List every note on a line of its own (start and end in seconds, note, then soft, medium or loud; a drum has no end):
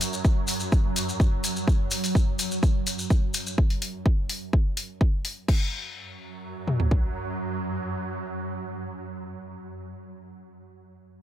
0.00 3.63 F#2 medium
0.00 3.63 F#3 medium
0.00 open hi-hat loud
0.00 maracas medium
0.13 maracas medium
0.25 kick loud
0.25 maracas soft
0.47 open hi-hat loud
0.47 maracas medium
0.60 maracas soft
0.72 kick loud
0.72 maracas soft
0.96 open hi-hat loud
0.96 maracas medium
1.09 maracas medium
1.20 kick loud
1.20 maracas soft
1.44 open hi-hat loud
1.44 maracas loud
1.56 maracas soft
1.68 kick loud
1.68 maracas soft
1.91 open hi-hat loud
1.91 maracas loud
2.04 open hi-hat medium
2.04 maracas medium
2.15 kick loud
2.15 maracas soft
2.39 open hi-hat loud
2.39 maracas medium
2.51 maracas soft
2.63 kick loud
2.63 maracas soft
2.87 open hi-hat loud
2.87 maracas medium
2.99 maracas medium
3.10 kick loud
3.10 maracas soft
3.34 open hi-hat loud
3.34 maracas medium
3.47 maracas medium
3.58 kick loud
3.70 open hi-hat medium
3.82 open hi-hat loud
4.06 kick loud
4.29 open hi-hat loud
4.53 kick loud
4.77 open hi-hat loud
5.01 kick loud
5.25 open hi-hat loud
5.48 9.56 F#2 medium
5.48 9.56 F#3 medium
5.48 kick loud
5.48 crash medium
6.67 mid tom medium
6.80 floor tom medium
6.91 kick medium